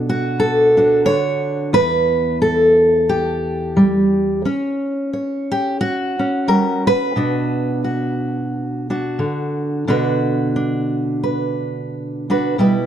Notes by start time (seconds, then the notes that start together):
Already playing: B2 D4 A4
0.09 F#4
0.40 A4
0.77 D4 F#4
1.05 D3 C#5
1.73 E2 B4
2.42 A4
3.09 G4
3.77 G3
4.45 C#4 C#5
5.13 C#5
5.52 G4
5.81 F#4
6.19 C#4
6.48 G3 A#4
6.87 B4
7.16 B2 D4 F#4
7.84 F#4
8.90 D4 F#4
9.19 D3
9.87 B2 D3 D4 F#4 B4
10.56 D4
11.23 B4
12.30 D4 F#4 B4
12.58 B2 G3 E4 B4